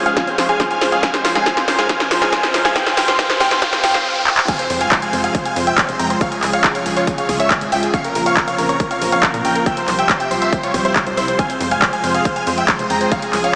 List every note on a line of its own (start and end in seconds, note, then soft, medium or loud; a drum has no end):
0.00 0.99 F3 medium
0.00 1.01 G#3 medium
0.00 1.01 C#4 medium
0.00 1.01 G#4 medium
0.00 1.01 C#5 medium
0.00 riser medium
0.06 0.10 G#3 medium
0.06 0.15 G#4 medium
0.06 0.14 F5 medium
0.06 0.15 F5 medium
0.06 closed hi-hat soft
0.17 0.24 F3 medium
0.17 0.25 F5 medium
0.17 0.25 G#5 medium
0.17 0.25 G#5 loud
0.17 kick loud
0.17 snare medium
0.17 closed hi-hat medium
0.27 0.32 C4 medium
0.27 0.36 C5 medium
0.27 closed hi-hat soft
0.38 0.43 F3 loud
0.38 0.47 C5 medium
0.38 snare medium
0.38 open hi-hat loud
0.49 0.56 G#3 medium
0.49 0.58 F5 medium
0.49 0.58 G#5 medium
0.49 closed hi-hat soft
0.60 0.67 F3 loud
0.60 0.68 C5 medium
0.60 kick loud
0.60 snare medium
0.60 closed hi-hat medium
0.71 0.75 F3 medium
0.71 0.79 F5 medium
0.71 0.79 G#5 medium
0.71 closed hi-hat soft
0.81 0.89 F4 medium
0.81 0.90 C5 medium
0.81 snare medium
0.81 open hi-hat medium
0.92 0.96 G#3 medium
0.92 1.01 G#4 medium
0.92 1.01 F5 medium
0.92 closed hi-hat soft
1.03 1.10 F3 medium
1.03 4.02 F3 medium
1.03 4.02 C4 medium
1.03 2.74 C#4 medium
1.03 2.74 A#4 medium
1.03 4.02 C5 medium
1.03 1.12 F5 medium
1.03 1.12 G#5 loud
1.03 kick loud
1.03 snare loud
1.03 closed hi-hat medium
1.14 1.18 C4 medium
1.14 1.22 C5 medium
1.14 snare medium
1.14 closed hi-hat soft
1.24 1.29 F3 loud
1.24 1.33 C5 medium
1.24 snare loud
1.24 open hi-hat loud
1.35 1.43 G#3 loud
1.35 1.44 F5 medium
1.35 1.44 G#5 medium
1.35 snare medium
1.35 closed hi-hat soft
1.46 1.53 F3 medium
1.46 1.55 F5 medium
1.46 1.55 G#5 loud
1.46 kick loud
1.46 snare medium
1.46 closed hi-hat medium
1.57 1.61 C4 medium
1.57 1.66 C5 medium
1.57 snare medium
1.57 closed hi-hat soft
1.68 1.72 F3 loud
1.68 1.76 C5 medium
1.68 snare loud
1.68 open hi-hat medium
1.78 1.86 G#3 loud
1.78 1.87 F5 medium
1.78 1.87 G#5 medium
1.78 snare medium
1.78 closed hi-hat soft
1.89 1.96 F3 medium
1.89 1.98 F5 medium
1.89 1.98 G#5 loud
1.89 kick loud
1.89 snare medium
1.89 closed hi-hat medium
2.00 2.04 C4 medium
2.00 2.09 C5 medium
2.00 snare medium
2.00 closed hi-hat soft
2.11 2.15 F3 loud
2.11 2.20 C5 medium
2.11 snare loud
2.11 open hi-hat loud
2.22 2.29 G#3 loud
2.22 2.30 F5 medium
2.22 2.30 G#5 medium
2.22 snare medium
2.22 closed hi-hat soft
2.32 2.40 F3 medium
2.32 2.41 F5 medium
2.32 2.41 G#5 loud
2.32 kick loud
2.32 snare loud
2.32 closed hi-hat medium
2.43 2.48 C4 medium
2.43 2.52 C5 medium
2.43 snare medium
2.43 closed hi-hat soft
2.54 2.58 F3 loud
2.54 2.63 C5 medium
2.54 snare loud
2.54 open hi-hat medium
2.65 2.72 G#3 loud
2.65 2.74 F5 medium
2.65 2.74 G#5 medium
2.65 snare medium
2.65 closed hi-hat soft
2.76 2.83 F3 medium
2.76 4.04 G3 medium
2.76 4.04 G4 medium
2.76 2.84 F5 medium
2.76 2.84 G5 loud
2.76 kick loud
2.76 snare loud
2.76 closed hi-hat medium
2.86 2.91 C4 medium
2.86 2.95 C5 medium
2.86 snare medium
2.86 closed hi-hat soft
2.97 3.04 F3 medium
2.97 3.06 F5 medium
2.97 3.06 G5 loud
2.97 snare loud
2.97 open hi-hat loud
3.08 3.12 C4 medium
3.08 3.17 C5 medium
3.08 snare loud
3.08 closed hi-hat soft
3.19 3.26 F3 medium
3.19 3.27 F5 medium
3.19 3.27 G5 loud
3.19 kick loud
3.19 snare loud
3.19 closed hi-hat medium
3.30 3.34 C4 medium
3.30 3.38 C5 medium
3.30 snare medium
3.30 closed hi-hat soft
3.40 3.48 F3 medium
3.40 3.49 F5 medium
3.40 3.49 G5 loud
3.40 kick medium
3.40 snare loud
3.40 open hi-hat medium
3.51 3.55 C4 medium
3.51 3.60 C5 medium
3.51 snare medium
3.51 closed hi-hat soft
3.62 3.69 F3 medium
3.62 3.71 F5 medium
3.62 3.71 G5 loud
3.62 kick loud
3.62 snare loud
3.62 closed hi-hat medium
3.73 3.77 C4 medium
3.73 3.81 C5 medium
3.73 snare medium
3.73 closed hi-hat soft
3.84 3.91 F3 medium
3.84 3.92 F5 medium
3.84 3.92 G5 loud
3.84 snare loud
3.84 open hi-hat loud
3.94 3.99 C4 medium
3.94 4.03 C5 medium
3.94 snare medium
3.94 closed hi-hat soft
4.27 clap medium
4.37 clap loud
4.48 6.19 C3 medium
4.48 11.35 F3 medium
4.48 7.90 G#3 medium
4.48 13.55 F4 medium
4.48 7.90 G#4 medium
4.48 4.57 F5 medium
4.48 4.57 G#5 loud
4.48 kick loud
4.48 closed hi-hat medium
4.48 crash loud
4.48 impact medium
4.59 4.68 C5 medium
4.59 closed hi-hat medium
4.70 4.86 F2 loud
4.70 4.79 C5 medium
4.70 open hi-hat loud
4.81 4.89 F5 medium
4.81 4.89 G#5 medium
4.81 closed hi-hat medium
4.91 5.00 C5 medium
4.91 kick loud
4.91 clap loud
4.91 closed hi-hat medium
5.02 5.11 F5 medium
5.02 5.11 G#5 medium
5.02 closed hi-hat medium
5.13 5.29 F2 medium
5.13 5.22 C5 medium
5.13 open hi-hat medium
5.24 5.32 G#4 medium
5.24 5.32 F5 medium
5.24 5.33 F5 medium
5.24 closed hi-hat medium
5.35 5.43 C5 medium
5.35 kick loud
5.35 closed hi-hat medium
5.45 5.54 F5 medium
5.45 5.54 G#5 medium
5.45 closed hi-hat medium
5.56 5.72 F2 loud
5.56 5.65 C5 medium
5.56 open hi-hat loud
5.67 5.76 E5 medium
5.67 5.76 G5 medium
5.67 5.76 G5 loud
5.67 closed hi-hat medium
5.78 5.86 C5 medium
5.78 kick loud
5.78 clap loud
5.78 closed hi-hat medium
5.89 5.97 F1 loud
5.89 5.97 C5 medium
5.89 closed hi-hat medium
5.99 6.16 F2 medium
5.99 6.08 G5 medium
5.99 6.08 A#5 medium
5.99 open hi-hat medium
6.10 6.19 C5 medium
6.10 closed hi-hat medium
6.21 7.92 C#3 medium
6.21 6.30 C#5 medium
6.21 6.30 F5 loud
6.21 kick loud
6.21 closed hi-hat medium
6.32 6.40 G#4 medium
6.32 closed hi-hat medium
6.43 6.59 C#2 loud
6.43 6.51 G#4 medium
6.43 clap soft
6.43 open hi-hat loud
6.53 6.62 C#5 medium
6.53 6.62 F5 medium
6.53 closed hi-hat medium
6.64 6.73 G#4 medium
6.64 kick loud
6.64 clap loud
6.64 closed hi-hat medium
6.75 6.84 C#5 medium
6.75 6.84 F5 medium
6.75 closed hi-hat medium
6.86 7.02 C#2 medium
6.86 6.94 G#4 medium
6.86 open hi-hat loud
6.96 7.05 F4 medium
6.96 7.05 C#5 medium
6.96 closed hi-hat medium
7.07 7.16 G#4 medium
7.07 kick loud
7.07 closed hi-hat medium
7.18 7.27 C#5 medium
7.18 7.27 F5 medium
7.18 closed hi-hat medium
7.29 7.45 C#2 loud
7.29 7.38 G#4 medium
7.29 kick medium
7.29 open hi-hat loud
7.40 7.48 C#5 medium
7.40 7.48 E5 medium
7.40 7.48 E5 loud
7.40 closed hi-hat medium
7.50 7.59 G#4 medium
7.50 kick loud
7.50 clap loud
7.50 closed hi-hat medium
7.61 7.69 G#1 loud
7.61 7.70 G#4 medium
7.61 closed hi-hat medium
7.72 7.88 C#2 medium
7.72 7.81 E5 medium
7.72 7.81 G5 medium
7.72 open hi-hat medium
7.83 7.91 G#4 medium
7.83 7.92 G#4 medium
7.83 closed hi-hat medium
7.94 9.65 C#3 medium
7.94 9.65 A#3 medium
7.94 9.65 C4 medium
7.94 8.02 C#5 medium
7.94 8.02 F5 loud
7.94 kick loud
7.94 closed hi-hat medium
8.04 8.13 A#4 medium
8.04 closed hi-hat medium
8.15 8.31 A#1 loud
8.15 8.24 A#4 medium
8.15 open hi-hat loud
8.26 8.35 C#5 medium
8.26 8.35 F5 medium
8.26 closed hi-hat medium
8.37 8.45 A#4 medium
8.37 8.46 A#4 medium
8.37 kick loud
8.37 clap loud
8.37 closed hi-hat medium
8.48 8.56 C#5 medium
8.48 8.56 F5 medium
8.48 closed hi-hat medium
8.58 8.75 A#1 medium
8.58 8.67 A#4 medium
8.58 open hi-hat loud
8.69 8.78 A#4 medium
8.69 8.78 C#5 medium
8.69 closed hi-hat medium
8.80 8.89 A#4 medium
8.80 kick loud
8.80 closed hi-hat medium
8.91 8.99 C#5 medium
8.91 8.99 F5 medium
8.91 closed hi-hat medium
9.02 9.18 A#1 loud
9.02 9.10 A#4 medium
9.02 open hi-hat loud
9.12 9.21 C#5 medium
9.12 9.21 F5 medium
9.12 closed hi-hat medium
9.23 9.32 A#4 medium
9.23 kick loud
9.23 clap loud
9.23 closed hi-hat medium
9.34 9.42 A#2 loud
9.34 9.43 A#4 medium
9.34 closed hi-hat medium
9.45 9.61 A#1 medium
9.45 9.53 A#4 medium
9.45 9.53 G5 medium
9.45 open hi-hat loud
9.55 9.64 A#4 medium
9.55 closed hi-hat medium
9.66 13.08 C3 medium
9.66 11.37 G3 medium
9.66 11.37 G4 medium
9.66 9.75 E5 medium
9.66 9.75 G5 loud
9.66 kick loud
9.66 closed hi-hat medium
9.77 9.86 C5 medium
9.77 closed hi-hat medium
9.88 10.04 C2 loud
9.88 9.97 C5 medium
9.88 clap soft
9.88 open hi-hat loud
9.99 10.07 E5 medium
9.99 10.07 G5 medium
9.99 closed hi-hat medium
10.09 10.18 C5 medium
10.09 kick loud
10.09 clap loud
10.09 closed hi-hat medium
10.20 10.29 E5 medium
10.20 10.29 G5 medium
10.20 closed hi-hat medium
10.31 10.47 C2 medium
10.31 10.40 C5 medium
10.31 open hi-hat medium
10.42 10.50 C5 medium
10.42 10.50 E5 medium
10.42 closed hi-hat medium
10.52 10.61 C5 medium
10.52 kick loud
10.52 closed hi-hat medium
10.63 10.72 F4 medium
10.63 10.72 C#5 medium
10.63 closed hi-hat soft
10.74 10.90 C2 medium
10.74 10.83 C5 medium
10.74 kick medium
10.74 open hi-hat loud
10.85 10.94 E4 medium
10.85 10.94 C5 medium
10.85 closed hi-hat medium
10.96 11.04 C5 medium
10.96 kick loud
10.96 clap loud
10.96 closed hi-hat medium
11.07 11.15 C2 loud
11.07 11.15 C5 medium
11.07 closed hi-hat soft
11.17 11.34 C2 loud
11.17 11.26 E4 medium
11.17 11.26 C5 medium
11.17 open hi-hat loud
11.28 11.37 C5 medium
11.28 closed hi-hat medium
11.39 13.55 F3 medium
11.39 13.55 G#3 medium
11.39 13.55 G#4 medium
11.39 11.48 F5 medium
11.39 11.48 G#5 loud
11.39 kick loud
11.39 closed hi-hat medium
11.50 11.58 C5 medium
11.50 closed hi-hat soft
11.60 11.77 F2 loud
11.60 11.69 C5 medium
11.60 open hi-hat loud
11.71 11.80 F5 medium
11.71 11.80 G#5 medium
11.71 closed hi-hat medium
11.82 11.91 C5 medium
11.82 kick loud
11.82 clap loud
11.82 closed hi-hat medium
11.93 12.02 F5 medium
11.93 12.02 G#5 medium
11.93 closed hi-hat medium
12.04 12.20 F2 medium
12.04 12.12 C5 medium
12.04 open hi-hat medium
12.14 12.23 G#4 medium
12.14 12.23 F5 medium
12.14 12.23 F5 loud
12.14 closed hi-hat medium
12.25 12.34 C5 medium
12.25 kick loud
12.25 closed hi-hat medium
12.36 12.45 F5 medium
12.36 12.45 G#5 medium
12.36 closed hi-hat soft
12.47 12.63 F2 loud
12.47 12.56 C5 medium
12.47 open hi-hat loud
12.58 12.66 E5 medium
12.58 12.66 G5 loud
12.58 closed hi-hat medium
12.68 12.77 C5 medium
12.68 kick loud
12.68 clap loud
12.68 closed hi-hat medium
12.79 12.87 F1 loud
12.79 12.88 C5 medium
12.79 closed hi-hat medium
12.90 13.06 F2 medium
12.90 12.99 G5 medium
12.90 12.99 A#5 medium
12.90 open hi-hat medium
13.01 13.09 C5 medium
13.01 13.10 C5 medium
13.01 closed hi-hat medium
13.12 13.55 C#3 medium
13.12 13.20 C#5 medium
13.12 13.20 F5 loud
13.12 kick loud
13.12 closed hi-hat medium
13.22 13.31 G#4 medium
13.22 closed hi-hat medium
13.33 13.49 C#2 loud
13.33 13.42 G#4 medium
13.33 clap soft
13.33 open hi-hat loud
13.44 13.53 C#5 medium
13.44 13.53 F5 medium
13.44 closed hi-hat medium